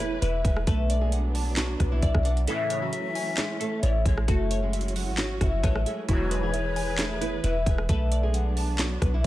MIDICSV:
0, 0, Header, 1, 8, 480
1, 0, Start_track
1, 0, Tempo, 451128
1, 716, Time_signature, 4, 2, 24, 8
1, 9858, End_track
2, 0, Start_track
2, 0, Title_t, "Synth pluck"
2, 0, Program_c, 0, 84
2, 0, Note_on_c, 0, 64, 68
2, 0, Note_on_c, 0, 71, 79
2, 0, Note_on_c, 0, 76, 76
2, 0, Note_on_c, 0, 80, 96
2, 224, Note_off_c, 0, 71, 0
2, 236, Note_on_c, 0, 71, 93
2, 464, Note_off_c, 0, 76, 0
2, 477, Note_on_c, 0, 76, 82
2, 704, Note_off_c, 0, 71, 0
2, 716, Note_off_c, 0, 64, 0
2, 716, Note_off_c, 0, 76, 0
2, 716, Note_off_c, 0, 80, 0
2, 717, Note_on_c, 0, 71, 99
2, 956, Note_on_c, 0, 74, 81
2, 1199, Note_on_c, 0, 78, 76
2, 1438, Note_on_c, 0, 81, 96
2, 1901, Note_off_c, 0, 71, 0
2, 1914, Note_on_c, 0, 71, 72
2, 2141, Note_off_c, 0, 74, 0
2, 2154, Note_on_c, 0, 74, 94
2, 2384, Note_off_c, 0, 78, 0
2, 2397, Note_on_c, 0, 78, 79
2, 2635, Note_off_c, 0, 71, 0
2, 2635, Note_off_c, 0, 74, 0
2, 2636, Note_off_c, 0, 78, 0
2, 2637, Note_off_c, 0, 81, 0
2, 2639, Note_on_c, 0, 69, 97
2, 2875, Note_on_c, 0, 73, 80
2, 3115, Note_on_c, 0, 76, 74
2, 3353, Note_on_c, 0, 80, 91
2, 3818, Note_off_c, 0, 69, 0
2, 3831, Note_on_c, 0, 69, 73
2, 4062, Note_off_c, 0, 73, 0
2, 4075, Note_on_c, 0, 73, 88
2, 4302, Note_off_c, 0, 76, 0
2, 4315, Note_on_c, 0, 76, 86
2, 4553, Note_off_c, 0, 69, 0
2, 4553, Note_on_c, 0, 66, 99
2, 4555, Note_off_c, 0, 73, 0
2, 4555, Note_off_c, 0, 76, 0
2, 4555, Note_off_c, 0, 80, 0
2, 4798, Note_on_c, 0, 73, 82
2, 5036, Note_on_c, 0, 76, 76
2, 5275, Note_on_c, 0, 78, 96
2, 5742, Note_off_c, 0, 66, 0
2, 5754, Note_on_c, 0, 66, 74
2, 5982, Note_off_c, 0, 73, 0
2, 5995, Note_on_c, 0, 73, 94
2, 6222, Note_off_c, 0, 76, 0
2, 6235, Note_on_c, 0, 76, 85
2, 6475, Note_off_c, 0, 66, 0
2, 6475, Note_off_c, 0, 73, 0
2, 6475, Note_off_c, 0, 76, 0
2, 6475, Note_off_c, 0, 78, 0
2, 6476, Note_on_c, 0, 64, 89
2, 6717, Note_on_c, 0, 71, 80
2, 6956, Note_on_c, 0, 76, 73
2, 7195, Note_on_c, 0, 80, 97
2, 7664, Note_off_c, 0, 64, 0
2, 7677, Note_on_c, 0, 64, 72
2, 7904, Note_off_c, 0, 71, 0
2, 7917, Note_on_c, 0, 71, 89
2, 8145, Note_off_c, 0, 76, 0
2, 8158, Note_on_c, 0, 76, 81
2, 8386, Note_off_c, 0, 71, 0
2, 8396, Note_off_c, 0, 64, 0
2, 8396, Note_off_c, 0, 80, 0
2, 8397, Note_off_c, 0, 76, 0
2, 8399, Note_on_c, 0, 71, 102
2, 8638, Note_on_c, 0, 74, 84
2, 8879, Note_on_c, 0, 78, 76
2, 9119, Note_on_c, 0, 81, 97
2, 9581, Note_off_c, 0, 71, 0
2, 9594, Note_on_c, 0, 71, 74
2, 9821, Note_off_c, 0, 74, 0
2, 9858, Note_off_c, 0, 71, 0
2, 9858, Note_off_c, 0, 78, 0
2, 9858, Note_off_c, 0, 81, 0
2, 9858, End_track
3, 0, Start_track
3, 0, Title_t, "Pan flute"
3, 0, Program_c, 1, 75
3, 0, Note_on_c, 1, 73, 118
3, 194, Note_off_c, 1, 73, 0
3, 230, Note_on_c, 1, 71, 86
3, 461, Note_off_c, 1, 71, 0
3, 478, Note_on_c, 1, 71, 84
3, 705, Note_off_c, 1, 71, 0
3, 2635, Note_on_c, 1, 76, 117
3, 4033, Note_off_c, 1, 76, 0
3, 4078, Note_on_c, 1, 74, 78
3, 4305, Note_off_c, 1, 74, 0
3, 4317, Note_on_c, 1, 73, 88
3, 4544, Note_off_c, 1, 73, 0
3, 5995, Note_on_c, 1, 71, 86
3, 6223, Note_off_c, 1, 71, 0
3, 6237, Note_on_c, 1, 69, 75
3, 6464, Note_off_c, 1, 69, 0
3, 6478, Note_on_c, 1, 73, 115
3, 7874, Note_off_c, 1, 73, 0
3, 7911, Note_on_c, 1, 71, 83
3, 8141, Note_off_c, 1, 71, 0
3, 8159, Note_on_c, 1, 71, 84
3, 8385, Note_off_c, 1, 71, 0
3, 9858, End_track
4, 0, Start_track
4, 0, Title_t, "Nylon-string guitar"
4, 0, Program_c, 2, 24
4, 0, Note_on_c, 2, 71, 89
4, 3, Note_on_c, 2, 59, 67
4, 187, Note_off_c, 2, 71, 0
4, 192, Note_off_c, 2, 59, 0
4, 231, Note_on_c, 2, 64, 82
4, 240, Note_on_c, 2, 52, 66
4, 425, Note_off_c, 2, 64, 0
4, 431, Note_off_c, 2, 52, 0
4, 476, Note_on_c, 2, 68, 81
4, 485, Note_on_c, 2, 56, 62
4, 669, Note_off_c, 2, 68, 0
4, 674, Note_off_c, 2, 56, 0
4, 713, Note_on_c, 2, 69, 101
4, 722, Note_on_c, 2, 57, 87
4, 1060, Note_off_c, 2, 69, 0
4, 1064, Note_off_c, 2, 57, 0
4, 1078, Note_on_c, 2, 68, 83
4, 1087, Note_on_c, 2, 56, 56
4, 1638, Note_off_c, 2, 68, 0
4, 1642, Note_off_c, 2, 56, 0
4, 1671, Note_on_c, 2, 66, 84
4, 1680, Note_on_c, 2, 54, 67
4, 2019, Note_off_c, 2, 66, 0
4, 2023, Note_off_c, 2, 54, 0
4, 2041, Note_on_c, 2, 64, 84
4, 2050, Note_on_c, 2, 52, 67
4, 2374, Note_off_c, 2, 64, 0
4, 2378, Note_off_c, 2, 52, 0
4, 2390, Note_on_c, 2, 62, 86
4, 2398, Note_on_c, 2, 74, 64
4, 2585, Note_off_c, 2, 62, 0
4, 2590, Note_off_c, 2, 74, 0
4, 2643, Note_on_c, 2, 64, 98
4, 2651, Note_on_c, 2, 52, 76
4, 2985, Note_off_c, 2, 64, 0
4, 2989, Note_off_c, 2, 52, 0
4, 3000, Note_on_c, 2, 66, 82
4, 3009, Note_on_c, 2, 54, 63
4, 3559, Note_off_c, 2, 66, 0
4, 3563, Note_off_c, 2, 54, 0
4, 3598, Note_on_c, 2, 68, 87
4, 3605, Note_on_c, 2, 56, 65
4, 3790, Note_off_c, 2, 68, 0
4, 3794, Note_off_c, 2, 56, 0
4, 3835, Note_on_c, 2, 69, 84
4, 3844, Note_on_c, 2, 57, 59
4, 4028, Note_off_c, 2, 69, 0
4, 4033, Note_off_c, 2, 57, 0
4, 4071, Note_on_c, 2, 64, 80
4, 4079, Note_on_c, 2, 52, 60
4, 4265, Note_off_c, 2, 64, 0
4, 4270, Note_off_c, 2, 52, 0
4, 4311, Note_on_c, 2, 68, 84
4, 4319, Note_on_c, 2, 56, 68
4, 4506, Note_off_c, 2, 68, 0
4, 4510, Note_off_c, 2, 56, 0
4, 4551, Note_on_c, 2, 69, 101
4, 4560, Note_on_c, 2, 57, 83
4, 4899, Note_off_c, 2, 69, 0
4, 4903, Note_off_c, 2, 57, 0
4, 4922, Note_on_c, 2, 68, 79
4, 4931, Note_on_c, 2, 56, 60
4, 5480, Note_off_c, 2, 68, 0
4, 5485, Note_off_c, 2, 56, 0
4, 5516, Note_on_c, 2, 66, 98
4, 5524, Note_on_c, 2, 54, 80
4, 5708, Note_off_c, 2, 66, 0
4, 5714, Note_off_c, 2, 54, 0
4, 5765, Note_on_c, 2, 64, 79
4, 5773, Note_on_c, 2, 52, 64
4, 5954, Note_off_c, 2, 64, 0
4, 5959, Note_off_c, 2, 52, 0
4, 5995, Note_on_c, 2, 69, 90
4, 6004, Note_on_c, 2, 57, 65
4, 6188, Note_off_c, 2, 69, 0
4, 6193, Note_off_c, 2, 57, 0
4, 6238, Note_on_c, 2, 68, 78
4, 6246, Note_on_c, 2, 56, 64
4, 6430, Note_off_c, 2, 68, 0
4, 6435, Note_off_c, 2, 56, 0
4, 6479, Note_on_c, 2, 66, 100
4, 6487, Note_on_c, 2, 54, 84
4, 6823, Note_off_c, 2, 66, 0
4, 6827, Note_off_c, 2, 54, 0
4, 6843, Note_on_c, 2, 68, 78
4, 6852, Note_on_c, 2, 56, 67
4, 7400, Note_off_c, 2, 68, 0
4, 7405, Note_off_c, 2, 56, 0
4, 7436, Note_on_c, 2, 69, 79
4, 7444, Note_on_c, 2, 57, 59
4, 7629, Note_off_c, 2, 69, 0
4, 7634, Note_off_c, 2, 57, 0
4, 7671, Note_on_c, 2, 71, 88
4, 7680, Note_on_c, 2, 59, 69
4, 7866, Note_off_c, 2, 71, 0
4, 7871, Note_off_c, 2, 59, 0
4, 7911, Note_on_c, 2, 64, 85
4, 7919, Note_on_c, 2, 52, 65
4, 8105, Note_off_c, 2, 64, 0
4, 8110, Note_off_c, 2, 52, 0
4, 8156, Note_on_c, 2, 68, 80
4, 8164, Note_on_c, 2, 56, 65
4, 8348, Note_off_c, 2, 68, 0
4, 8353, Note_off_c, 2, 56, 0
4, 8395, Note_on_c, 2, 69, 104
4, 8403, Note_on_c, 2, 57, 85
4, 8740, Note_off_c, 2, 69, 0
4, 8745, Note_off_c, 2, 57, 0
4, 8759, Note_on_c, 2, 68, 86
4, 8767, Note_on_c, 2, 56, 57
4, 9318, Note_off_c, 2, 68, 0
4, 9323, Note_off_c, 2, 56, 0
4, 9352, Note_on_c, 2, 66, 85
4, 9361, Note_on_c, 2, 54, 64
4, 9699, Note_off_c, 2, 66, 0
4, 9704, Note_off_c, 2, 54, 0
4, 9724, Note_on_c, 2, 64, 85
4, 9732, Note_on_c, 2, 52, 66
4, 9858, Note_off_c, 2, 52, 0
4, 9858, Note_off_c, 2, 64, 0
4, 9858, End_track
5, 0, Start_track
5, 0, Title_t, "String section"
5, 0, Program_c, 3, 48
5, 0, Note_on_c, 3, 52, 87
5, 0, Note_on_c, 3, 64, 83
5, 0, Note_on_c, 3, 68, 82
5, 0, Note_on_c, 3, 71, 98
5, 678, Note_off_c, 3, 64, 0
5, 697, Note_off_c, 3, 52, 0
5, 697, Note_off_c, 3, 68, 0
5, 698, Note_off_c, 3, 71, 0
5, 716, Note_on_c, 3, 59, 79
5, 717, Note_on_c, 3, 54, 88
5, 717, Note_on_c, 3, 62, 98
5, 2617, Note_off_c, 3, 54, 0
5, 2617, Note_off_c, 3, 59, 0
5, 2617, Note_off_c, 3, 62, 0
5, 2635, Note_on_c, 3, 52, 85
5, 2635, Note_on_c, 3, 57, 80
5, 2636, Note_on_c, 3, 61, 94
5, 4536, Note_off_c, 3, 52, 0
5, 4536, Note_off_c, 3, 57, 0
5, 4536, Note_off_c, 3, 61, 0
5, 4557, Note_on_c, 3, 54, 85
5, 4557, Note_on_c, 3, 61, 80
5, 4557, Note_on_c, 3, 64, 80
5, 4557, Note_on_c, 3, 66, 96
5, 6457, Note_off_c, 3, 54, 0
5, 6457, Note_off_c, 3, 61, 0
5, 6457, Note_off_c, 3, 66, 0
5, 6477, Note_on_c, 3, 52, 88
5, 6477, Note_on_c, 3, 68, 81
5, 6477, Note_on_c, 3, 71, 97
5, 8358, Note_off_c, 3, 64, 0
5, 8377, Note_off_c, 3, 52, 0
5, 8377, Note_off_c, 3, 68, 0
5, 8377, Note_off_c, 3, 71, 0
5, 8397, Note_on_c, 3, 54, 90
5, 8397, Note_on_c, 3, 59, 82
5, 8397, Note_on_c, 3, 62, 100
5, 9858, Note_off_c, 3, 54, 0
5, 9858, Note_off_c, 3, 59, 0
5, 9858, Note_off_c, 3, 62, 0
5, 9858, End_track
6, 0, Start_track
6, 0, Title_t, "Analog polysynth"
6, 0, Program_c, 4, 90
6, 2635, Note_on_c, 4, 49, 109
6, 2636, Note_on_c, 4, 45, 112
6, 2636, Note_on_c, 4, 52, 110
6, 3092, Note_off_c, 4, 45, 0
6, 3092, Note_off_c, 4, 49, 0
6, 3092, Note_off_c, 4, 52, 0
6, 6476, Note_on_c, 4, 44, 109
6, 6476, Note_on_c, 4, 47, 96
6, 6476, Note_on_c, 4, 52, 111
6, 6932, Note_off_c, 4, 44, 0
6, 6932, Note_off_c, 4, 47, 0
6, 6932, Note_off_c, 4, 52, 0
6, 9858, End_track
7, 0, Start_track
7, 0, Title_t, "808-style bass"
7, 0, Program_c, 5, 38
7, 0, Note_on_c, 5, 28, 110
7, 193, Note_off_c, 5, 28, 0
7, 236, Note_on_c, 5, 28, 107
7, 466, Note_off_c, 5, 28, 0
7, 475, Note_on_c, 5, 28, 109
7, 706, Note_off_c, 5, 28, 0
7, 715, Note_on_c, 5, 35, 110
7, 1873, Note_off_c, 5, 35, 0
7, 1915, Note_on_c, 5, 35, 106
7, 2146, Note_off_c, 5, 35, 0
7, 2155, Note_on_c, 5, 35, 108
7, 2277, Note_off_c, 5, 35, 0
7, 2283, Note_on_c, 5, 35, 104
7, 2622, Note_off_c, 5, 35, 0
7, 4076, Note_on_c, 5, 33, 107
7, 4306, Note_off_c, 5, 33, 0
7, 4314, Note_on_c, 5, 33, 108
7, 4545, Note_off_c, 5, 33, 0
7, 4556, Note_on_c, 5, 30, 103
7, 5403, Note_on_c, 5, 32, 99
7, 5419, Note_off_c, 5, 30, 0
7, 5738, Note_off_c, 5, 32, 0
7, 5756, Note_on_c, 5, 30, 105
7, 5986, Note_off_c, 5, 30, 0
7, 5996, Note_on_c, 5, 33, 108
7, 6226, Note_off_c, 5, 33, 0
7, 6475, Note_on_c, 5, 28, 108
7, 7873, Note_off_c, 5, 28, 0
7, 7915, Note_on_c, 5, 28, 107
7, 8146, Note_off_c, 5, 28, 0
7, 8154, Note_on_c, 5, 28, 111
7, 8385, Note_off_c, 5, 28, 0
7, 8396, Note_on_c, 5, 35, 108
7, 9553, Note_off_c, 5, 35, 0
7, 9595, Note_on_c, 5, 35, 111
7, 9826, Note_off_c, 5, 35, 0
7, 9858, End_track
8, 0, Start_track
8, 0, Title_t, "Drums"
8, 0, Note_on_c, 9, 42, 67
8, 105, Note_off_c, 9, 42, 0
8, 236, Note_on_c, 9, 42, 79
8, 342, Note_off_c, 9, 42, 0
8, 475, Note_on_c, 9, 36, 99
8, 478, Note_on_c, 9, 42, 77
8, 581, Note_off_c, 9, 36, 0
8, 584, Note_off_c, 9, 42, 0
8, 602, Note_on_c, 9, 37, 98
8, 708, Note_off_c, 9, 37, 0
8, 714, Note_on_c, 9, 42, 83
8, 716, Note_on_c, 9, 36, 114
8, 821, Note_off_c, 9, 42, 0
8, 822, Note_off_c, 9, 36, 0
8, 955, Note_on_c, 9, 42, 87
8, 1061, Note_off_c, 9, 42, 0
8, 1194, Note_on_c, 9, 42, 70
8, 1300, Note_off_c, 9, 42, 0
8, 1435, Note_on_c, 9, 46, 59
8, 1541, Note_off_c, 9, 46, 0
8, 1667, Note_on_c, 9, 39, 102
8, 1674, Note_on_c, 9, 38, 123
8, 1676, Note_on_c, 9, 42, 81
8, 1773, Note_off_c, 9, 39, 0
8, 1781, Note_off_c, 9, 38, 0
8, 1782, Note_off_c, 9, 42, 0
8, 1914, Note_on_c, 9, 37, 74
8, 1915, Note_on_c, 9, 36, 92
8, 1916, Note_on_c, 9, 42, 70
8, 2021, Note_off_c, 9, 36, 0
8, 2021, Note_off_c, 9, 37, 0
8, 2023, Note_off_c, 9, 42, 0
8, 2155, Note_on_c, 9, 36, 96
8, 2155, Note_on_c, 9, 42, 76
8, 2261, Note_off_c, 9, 42, 0
8, 2262, Note_off_c, 9, 36, 0
8, 2282, Note_on_c, 9, 37, 101
8, 2283, Note_on_c, 9, 36, 97
8, 2389, Note_off_c, 9, 37, 0
8, 2390, Note_off_c, 9, 36, 0
8, 2395, Note_on_c, 9, 42, 73
8, 2501, Note_off_c, 9, 42, 0
8, 2521, Note_on_c, 9, 42, 43
8, 2628, Note_off_c, 9, 42, 0
8, 2634, Note_on_c, 9, 42, 81
8, 2740, Note_off_c, 9, 42, 0
8, 2875, Note_on_c, 9, 42, 86
8, 2982, Note_off_c, 9, 42, 0
8, 3114, Note_on_c, 9, 42, 69
8, 3221, Note_off_c, 9, 42, 0
8, 3356, Note_on_c, 9, 46, 59
8, 3463, Note_off_c, 9, 46, 0
8, 3587, Note_on_c, 9, 39, 103
8, 3595, Note_on_c, 9, 38, 127
8, 3597, Note_on_c, 9, 42, 78
8, 3694, Note_off_c, 9, 39, 0
8, 3702, Note_off_c, 9, 38, 0
8, 3703, Note_off_c, 9, 42, 0
8, 3838, Note_on_c, 9, 42, 65
8, 3944, Note_off_c, 9, 42, 0
8, 4075, Note_on_c, 9, 42, 77
8, 4181, Note_off_c, 9, 42, 0
8, 4315, Note_on_c, 9, 36, 94
8, 4317, Note_on_c, 9, 42, 76
8, 4421, Note_off_c, 9, 36, 0
8, 4423, Note_off_c, 9, 42, 0
8, 4443, Note_on_c, 9, 37, 101
8, 4549, Note_off_c, 9, 37, 0
8, 4556, Note_on_c, 9, 36, 116
8, 4556, Note_on_c, 9, 42, 82
8, 4662, Note_off_c, 9, 42, 0
8, 4663, Note_off_c, 9, 36, 0
8, 4796, Note_on_c, 9, 42, 90
8, 4902, Note_off_c, 9, 42, 0
8, 5036, Note_on_c, 9, 42, 70
8, 5117, Note_off_c, 9, 42, 0
8, 5117, Note_on_c, 9, 42, 54
8, 5196, Note_off_c, 9, 42, 0
8, 5196, Note_on_c, 9, 42, 41
8, 5276, Note_on_c, 9, 46, 58
8, 5302, Note_off_c, 9, 42, 0
8, 5382, Note_off_c, 9, 46, 0
8, 5507, Note_on_c, 9, 39, 100
8, 5515, Note_on_c, 9, 38, 122
8, 5517, Note_on_c, 9, 42, 79
8, 5614, Note_off_c, 9, 39, 0
8, 5621, Note_off_c, 9, 38, 0
8, 5623, Note_off_c, 9, 42, 0
8, 5755, Note_on_c, 9, 36, 91
8, 5756, Note_on_c, 9, 37, 73
8, 5758, Note_on_c, 9, 42, 73
8, 5862, Note_off_c, 9, 36, 0
8, 5862, Note_off_c, 9, 37, 0
8, 5864, Note_off_c, 9, 42, 0
8, 5996, Note_on_c, 9, 36, 100
8, 5996, Note_on_c, 9, 42, 78
8, 6102, Note_off_c, 9, 36, 0
8, 6103, Note_off_c, 9, 42, 0
8, 6124, Note_on_c, 9, 37, 99
8, 6230, Note_off_c, 9, 37, 0
8, 6238, Note_on_c, 9, 42, 72
8, 6345, Note_off_c, 9, 42, 0
8, 6475, Note_on_c, 9, 42, 80
8, 6476, Note_on_c, 9, 36, 113
8, 6581, Note_off_c, 9, 42, 0
8, 6582, Note_off_c, 9, 36, 0
8, 6716, Note_on_c, 9, 42, 89
8, 6822, Note_off_c, 9, 42, 0
8, 6955, Note_on_c, 9, 42, 68
8, 7061, Note_off_c, 9, 42, 0
8, 7196, Note_on_c, 9, 46, 56
8, 7302, Note_off_c, 9, 46, 0
8, 7427, Note_on_c, 9, 39, 104
8, 7434, Note_on_c, 9, 38, 124
8, 7436, Note_on_c, 9, 42, 78
8, 7533, Note_off_c, 9, 39, 0
8, 7541, Note_off_c, 9, 38, 0
8, 7542, Note_off_c, 9, 42, 0
8, 7677, Note_on_c, 9, 42, 68
8, 7784, Note_off_c, 9, 42, 0
8, 7915, Note_on_c, 9, 42, 76
8, 8021, Note_off_c, 9, 42, 0
8, 8154, Note_on_c, 9, 36, 96
8, 8157, Note_on_c, 9, 42, 75
8, 8261, Note_off_c, 9, 36, 0
8, 8263, Note_off_c, 9, 42, 0
8, 8282, Note_on_c, 9, 37, 100
8, 8388, Note_off_c, 9, 37, 0
8, 8395, Note_on_c, 9, 42, 83
8, 8396, Note_on_c, 9, 36, 110
8, 8502, Note_off_c, 9, 36, 0
8, 8502, Note_off_c, 9, 42, 0
8, 8636, Note_on_c, 9, 42, 88
8, 8742, Note_off_c, 9, 42, 0
8, 8874, Note_on_c, 9, 42, 68
8, 8981, Note_off_c, 9, 42, 0
8, 9117, Note_on_c, 9, 46, 58
8, 9223, Note_off_c, 9, 46, 0
8, 9348, Note_on_c, 9, 39, 96
8, 9356, Note_on_c, 9, 38, 126
8, 9357, Note_on_c, 9, 42, 79
8, 9454, Note_off_c, 9, 39, 0
8, 9462, Note_off_c, 9, 38, 0
8, 9464, Note_off_c, 9, 42, 0
8, 9595, Note_on_c, 9, 36, 94
8, 9596, Note_on_c, 9, 37, 69
8, 9598, Note_on_c, 9, 42, 72
8, 9702, Note_off_c, 9, 36, 0
8, 9702, Note_off_c, 9, 37, 0
8, 9704, Note_off_c, 9, 42, 0
8, 9858, End_track
0, 0, End_of_file